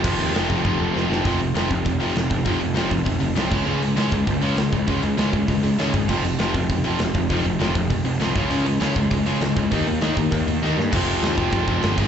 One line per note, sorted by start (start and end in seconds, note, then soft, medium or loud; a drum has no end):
0.04 0.18 F1 medium
0.04 0.33 F2 medium
0.04 0.33 C3 loud
0.04 0.33 F3 loud
0.04 kick loud
0.04 crash loud
0.04 crash medium
0.19 0.32 D#2 medium
0.34 0.48 F1 medium
0.34 0.48 F2 medium
0.34 0.48 C3 medium
0.34 0.48 F3 medium
0.34 snare loud
0.34 crash medium
0.49 0.63 F1 medium
0.49 0.63 F2 medium
0.49 0.64 C3 medium
0.49 0.64 F3 medium
0.49 kick medium
0.65 0.78 F1 medium
0.65 0.93 F2 loud
0.65 0.93 C3 loud
0.65 0.94 F3 loud
0.65 kick loud
0.65 crash medium
0.80 0.93 F1 loud
0.94 1.09 F1 medium
0.94 1.09 F2 medium
0.94 1.09 C3 medium
0.94 1.08 F3 medium
0.94 snare medium
1.10 1.24 F1 loud
1.10 1.23 F2 medium
1.10 1.24 C3 medium
1.10 1.24 F3 medium
1.10 snare medium
1.24 1.50 F1 medium
1.24 1.39 F2 medium
1.24 1.39 C3 medium
1.24 1.39 F3 medium
1.24 kick loud
1.24 open hi-hat medium
1.40 1.53 F2 medium
1.40 1.54 C3 medium
1.40 open hi-hat medium
1.54 1.68 F1 medium
1.54 1.68 F2 medium
1.54 1.69 C3 medium
1.54 1.69 F3 medium
1.54 snare loud
1.54 open hi-hat medium
1.69 1.83 F1 medium
1.69 1.83 F2 medium
1.69 1.83 C3 medium
1.69 kick medium
1.69 open hi-hat medium
1.85 2.11 F1 medium
1.85 1.99 F2 medium
1.85 1.99 C3 medium
1.85 kick medium
1.85 open hi-hat medium
2.00 2.14 F2 medium
2.00 2.14 C3 loud
2.00 2.15 F3 loud
2.00 open hi-hat medium
2.15 2.28 F1 loud
2.15 2.28 F2 medium
2.15 2.29 C3 medium
2.15 snare loud
2.15 open hi-hat medium
2.30 2.44 F1 loud
2.30 2.44 F2 medium
2.30 2.44 C3 medium
2.30 kick medium
2.30 open hi-hat medium
2.45 2.59 F1 loud
2.45 2.59 F2 medium
2.45 2.59 C3 medium
2.45 2.60 F3 loud
2.45 kick medium
2.45 open hi-hat medium
2.60 2.73 F1 medium
2.60 2.73 F2 medium
2.60 2.74 C3 medium
2.60 open hi-hat medium
2.74 2.89 F1 loud
2.74 2.89 F2 medium
2.74 2.89 C3 medium
2.74 2.90 F3 medium
2.74 snare loud
2.74 open hi-hat medium
2.90 3.04 F1 medium
2.90 3.04 F2 medium
2.90 3.04 C3 medium
2.90 kick medium
2.90 open hi-hat medium
3.05 3.19 F1 loud
3.05 3.19 F2 medium
3.05 3.19 C3 medium
3.05 kick medium
3.05 open hi-hat medium
3.20 3.34 F1 medium
3.20 3.34 F2 medium
3.20 3.34 C3 medium
3.20 open hi-hat medium
3.35 3.52 C2 medium
3.35 3.50 F2 loud
3.35 3.50 C3 medium
3.35 3.50 F3 loud
3.35 snare loud
3.35 open hi-hat medium
3.50 3.64 C#2 medium
3.50 3.64 C#3 medium
3.50 3.65 G#3 loud
3.50 3.65 C#4 loud
3.50 kick loud
3.50 crash medium
3.66 3.92 C#2 loud
3.66 3.80 C#3 medium
3.66 3.81 G#3 medium
3.66 3.81 C#4 loud
3.81 3.95 C#3 medium
3.81 3.95 G#3 medium
3.81 open hi-hat medium
3.96 4.09 C#2 medium
3.96 4.11 C#3 medium
3.96 4.11 G#3 medium
3.96 4.11 C#4 loud
3.96 snare loud
3.96 open hi-hat medium
4.12 4.25 C#2 medium
4.12 4.25 C#3 medium
4.12 4.25 G#3 medium
4.12 kick medium
4.12 open hi-hat medium
4.27 4.53 C#2 medium
4.27 4.40 C#3 medium
4.27 4.41 G#3 medium
4.27 kick loud
4.27 open hi-hat medium
4.41 4.56 C#3 loud
4.41 4.56 G#3 medium
4.41 4.56 C#4 medium
4.41 open hi-hat medium
4.57 4.70 C#2 medium
4.57 4.71 C#3 medium
4.57 4.71 G#3 medium
4.57 snare loud
4.57 open hi-hat medium
4.73 4.85 C#2 medium
4.73 4.86 C#3 medium
4.73 4.86 G#3 medium
4.73 kick medium
4.73 open hi-hat medium
4.87 5.01 C#2 loud
4.87 5.02 C#3 medium
4.87 5.02 G#3 medium
4.87 5.02 C#4 medium
4.87 kick medium
4.87 open hi-hat medium
5.03 5.15 C#2 medium
5.03 5.16 C#3 medium
5.03 5.17 G#3 medium
5.03 open hi-hat medium
5.17 5.30 C#2 loud
5.17 5.31 C#3 medium
5.17 5.32 G#3 medium
5.17 5.32 C#4 medium
5.17 snare loud
5.17 open hi-hat medium
5.32 5.46 C#2 medium
5.32 5.46 C#3 medium
5.32 5.47 G#3 medium
5.32 kick medium
5.32 open hi-hat medium
5.48 5.61 C#2 loud
5.48 5.62 C#3 medium
5.48 5.62 G#3 loud
5.48 kick medium
5.48 open hi-hat medium
5.63 5.76 C#2 medium
5.63 5.77 C#3 medium
5.63 5.77 G#3 medium
5.63 open hi-hat medium
5.78 5.91 C#2 medium
5.78 5.93 C#3 medium
5.78 5.93 G#3 loud
5.78 5.93 C#4 loud
5.78 snare loud
5.78 open hi-hat medium
5.94 6.06 G#1 medium
5.94 6.07 C#3 medium
5.94 6.07 G#3 medium
5.94 kick medium
5.94 open hi-hat medium
6.09 6.35 F1 medium
6.09 6.23 F2 medium
6.09 6.23 C3 medium
6.09 6.23 F3 medium
6.09 kick loud
6.09 crash loud
6.24 6.37 F2 medium
6.24 6.38 C3 medium
6.24 open hi-hat medium
6.39 6.52 F1 medium
6.39 6.53 F2 medium
6.39 6.53 C3 medium
6.39 6.53 F3 loud
6.39 snare loud
6.39 open hi-hat medium
6.54 6.67 F1 medium
6.54 6.67 F2 medium
6.54 6.68 C3 medium
6.54 kick medium
6.54 open hi-hat medium
6.69 6.95 F1 loud
6.69 6.83 F2 medium
6.69 6.83 C3 loud
6.69 kick loud
6.69 open hi-hat medium
6.84 6.98 F2 medium
6.84 6.99 C3 medium
6.84 6.99 F3 loud
6.84 open hi-hat medium
6.99 7.12 F1 medium
6.99 7.13 F2 medium
6.99 7.13 C3 medium
6.99 snare loud
6.99 open hi-hat medium
7.14 7.27 F1 medium
7.14 7.28 F2 medium
7.14 7.29 C3 medium
7.14 kick medium
7.14 open hi-hat medium
7.30 7.43 F1 medium
7.30 7.43 F2 medium
7.30 7.43 C3 medium
7.30 7.44 F3 loud
7.30 kick medium
7.30 open hi-hat medium
7.44 7.57 F1 medium
7.44 7.58 F2 medium
7.44 7.58 C3 medium
7.44 open hi-hat medium
7.60 7.72 F1 medium
7.60 7.74 F2 medium
7.60 7.74 C3 medium
7.60 7.74 F3 medium
7.60 snare loud
7.60 open hi-hat medium
7.75 7.88 F1 medium
7.75 7.89 F2 medium
7.75 7.89 C3 medium
7.75 kick medium
7.75 open hi-hat medium
7.90 8.03 F1 loud
7.90 8.03 F2 medium
7.90 8.04 C3 medium
7.90 kick loud
7.90 open hi-hat medium
8.05 8.18 F1 medium
8.05 8.18 F2 medium
8.05 8.19 C3 medium
8.05 open hi-hat medium
8.20 8.33 C2 medium
8.20 8.34 F2 medium
8.20 8.34 C3 medium
8.20 8.35 F3 loud
8.20 snare loud
8.20 open hi-hat medium
8.35 8.48 C#2 loud
8.35 8.49 C#3 medium
8.35 8.49 G#3 medium
8.35 8.50 C#4 medium
8.35 kick loud
8.35 open hi-hat medium
8.50 8.75 C#2 medium
8.50 8.64 C#3 medium
8.50 8.64 G#3 medium
8.50 8.65 C#4 medium
8.50 open hi-hat medium
8.66 8.79 C#3 medium
8.66 8.79 G#3 medium
8.66 open hi-hat medium
8.80 8.93 C#2 medium
8.80 8.95 C#3 medium
8.80 8.95 G#3 medium
8.80 8.95 C#4 loud
8.80 snare loud
8.80 open hi-hat medium
8.96 9.09 C#2 medium
8.96 9.09 C#3 medium
8.96 9.10 G#3 medium
8.96 kick medium
8.96 open hi-hat medium
9.11 9.37 C#2 loud
9.11 9.24 C#3 medium
9.11 9.24 G#3 medium
9.11 kick loud
9.11 open hi-hat medium
9.26 9.40 C#3 medium
9.26 9.41 G#3 loud
9.26 9.41 C#4 loud
9.26 open hi-hat medium
9.41 9.54 C#2 medium
9.41 9.55 C#3 medium
9.41 9.55 G#3 medium
9.41 snare loud
9.41 open hi-hat medium
9.56 9.69 C#2 medium
9.56 9.70 C#3 medium
9.56 9.70 G#3 medium
9.56 kick medium
9.56 open hi-hat medium
9.71 9.84 D#2 loud
9.71 9.85 D#3 medium
9.71 9.86 A#3 medium
9.71 9.86 D#4 medium
9.71 kick loud
9.71 open hi-hat medium
9.86 9.99 D#2 medium
9.86 10.00 D#3 medium
9.86 10.01 A#3 medium
9.86 open hi-hat medium
10.01 10.14 D#2 medium
10.01 10.16 D#3 medium
10.01 10.16 A#3 medium
10.01 10.16 D#4 loud
10.01 snare loud
10.01 open hi-hat medium
10.17 10.30 D#2 loud
10.17 10.30 D#3 medium
10.17 10.31 A#3 medium
10.17 kick medium
10.17 open hi-hat medium
10.31 10.45 D#2 loud
10.31 10.45 D#3 medium
10.31 10.45 A#3 medium
10.31 kick medium
10.31 open hi-hat medium
10.46 10.59 D#2 medium
10.46 10.61 D#3 medium
10.46 10.61 A#3 medium
10.46 open hi-hat medium
10.62 10.75 D#2 medium
10.62 10.76 D#3 loud
10.62 10.77 A#3 medium
10.62 10.77 D#4 loud
10.62 snare medium
10.77 10.90 G2 medium
10.77 10.91 D#3 medium
10.77 10.91 A#3 medium
10.77 snare medium
10.92 11.16 F1 loud
10.92 11.66 F2 loud
10.92 11.67 C3 medium
10.92 11.66 F3 loud
10.92 kick loud
10.92 crash loud
10.92 crash medium
11.22 11.34 D#2 medium
11.22 snare loud
11.22 crash medium
11.37 11.50 F1 loud
11.37 11.97 F2 medium
11.37 11.97 C3 medium
11.37 11.96 F3 medium
11.37 kick medium
11.53 11.65 F1 loud
11.53 kick loud
11.53 crash medium
11.67 11.80 F1 loud
11.67 11.81 F2 medium
11.67 11.82 C3 medium
11.67 11.82 F3 loud
11.67 kick medium
11.82 11.98 G1 medium
11.82 11.96 F2 medium
11.82 11.97 C3 medium
11.82 11.97 F3 medium
11.82 snare loud
11.82 crash medium
11.97 12.08 G#1 medium
11.97 12.08 G#2 medium
11.97 12.08 D#3 medium
11.97 12.08 G#3 loud
11.97 kick loud
11.97 crash loud